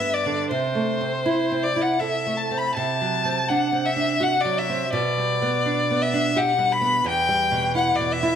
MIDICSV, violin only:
0, 0, Header, 1, 2, 480
1, 0, Start_track
1, 0, Key_signature, 1, "major"
1, 0, Tempo, 751880
1, 315, Time_signature, 3, 2, 24, 8
1, 1754, Tempo, 731707
1, 2714, Tempo, 726392
1, 3674, Tempo, 707547
1, 5498, End_track
2, 0, Start_track
2, 0, Title_t, "Violin"
2, 0, Program_c, 0, 40
2, 0, Note_on_c, 0, 76, 96
2, 86, Note_on_c, 0, 74, 85
2, 96, Note_off_c, 0, 76, 0
2, 314, Note_off_c, 0, 74, 0
2, 318, Note_on_c, 0, 72, 84
2, 1043, Note_on_c, 0, 74, 91
2, 1053, Note_off_c, 0, 72, 0
2, 1161, Note_on_c, 0, 78, 79
2, 1171, Note_off_c, 0, 74, 0
2, 1276, Note_on_c, 0, 76, 90
2, 1286, Note_off_c, 0, 78, 0
2, 1516, Note_on_c, 0, 81, 82
2, 1526, Note_off_c, 0, 76, 0
2, 1644, Note_on_c, 0, 83, 91
2, 1653, Note_off_c, 0, 81, 0
2, 1752, Note_off_c, 0, 83, 0
2, 1756, Note_on_c, 0, 81, 95
2, 2237, Note_on_c, 0, 78, 87
2, 2246, Note_off_c, 0, 81, 0
2, 2482, Note_on_c, 0, 76, 95
2, 2492, Note_off_c, 0, 78, 0
2, 2725, Note_on_c, 0, 78, 94
2, 2735, Note_off_c, 0, 76, 0
2, 2842, Note_on_c, 0, 74, 88
2, 2851, Note_off_c, 0, 78, 0
2, 2959, Note_on_c, 0, 76, 87
2, 2969, Note_off_c, 0, 74, 0
2, 3183, Note_off_c, 0, 76, 0
2, 3187, Note_on_c, 0, 74, 91
2, 3914, Note_on_c, 0, 76, 96
2, 3924, Note_off_c, 0, 74, 0
2, 4155, Note_on_c, 0, 78, 98
2, 4166, Note_off_c, 0, 76, 0
2, 4391, Note_on_c, 0, 83, 108
2, 4401, Note_off_c, 0, 78, 0
2, 4627, Note_off_c, 0, 83, 0
2, 4635, Note_on_c, 0, 79, 115
2, 5091, Note_off_c, 0, 79, 0
2, 5095, Note_on_c, 0, 78, 93
2, 5227, Note_on_c, 0, 74, 91
2, 5237, Note_off_c, 0, 78, 0
2, 5341, Note_on_c, 0, 76, 104
2, 5351, Note_off_c, 0, 74, 0
2, 5498, Note_off_c, 0, 76, 0
2, 5498, End_track
0, 0, End_of_file